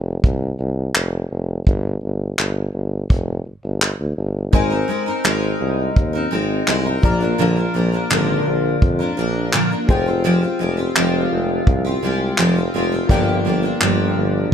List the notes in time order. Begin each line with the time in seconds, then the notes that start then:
Already playing: F1
0.24 C2, kick
0.59 C2
0.95 F1, clap
1.30 F1
1.66 G1, kick
2.02 G1
2.38 G1, clap
2.73 G1
3.10 F1, kick
3.46 G1
3.63 G1
3.82 clap
3.99 D2
4.17 G1
4.52 G#1 G#3 C4 D#4 A#4 C5 G#5, kick
4.70 C4 D#4 A#4
4.88 G#3 C4 D#4 A#4
5.06 C4 D#4 A#4
5.24 G#1 G#3 C4 D#4 A#4, clap
5.60 C2
5.96 D#2, kick
6.13 C4 D#4 A#4
6.31 G#1 G#3 C4 D#4 A#4
6.67 C2 G#3 C4 D#4 A#4, clap
6.85 C4 D#4 A#4
7.01 A#1 F3 A#3 D4 F4 A#4 D5 A#5, kick
7.20 F3 A#3 D4 A#4
7.38 A#1 A#2 D3 F3 A#3 D4 A#4
7.56 F3 A#3 D4 A#4
7.74 A#1 F3 A#3 D4 A#4
7.92 F3 A#3 D4 A#4
8.10 G#1 A#2 D3 F3 A#3 D4 A#4, clap
8.46 A#1
8.82 F2, kick
8.99 F3 A#3 D4 A#4
9.17 A#1 F3 A#3 D4 A#4
9.53 A#2 D3 F3 A#3 D4 A#4, clap
9.71 F3 A#3 D4 A#4
9.87 F1 G#3 C4 F4 G4 G#4 C5, kick
9.91 G5
10.06 C4 F4 G4
10.24 F3 G#3 C4 F4 G4
10.42 C4 F4 G4
10.59 F1 G#3 C4 F4 G4
10.77 C4 F4 G4
10.95 F1 F3 G#3 C4 F4 G4, clap
11.31 F1
11.67 C2, kick
11.85 C4 F4 G4
12.02 C2 G#3 C4 F4 G4
12.38 F1 F3 G#3 C4 F4 G4, clap
12.56 C4 F4 G4
12.74 F1 G#3 C4 F4 G4
12.92 C4 F4 G4
13.07 G1 G2 D3 F3 A#3 D4 F4 A#4 D5 G5, kick
13.12 G4
13.45 G1 F3 A#3 D4 G4
13.62 F3 A#3 D4 G4
13.81 G1 G2 D3 F3 A#3 D4 G4, clap
14.16 G1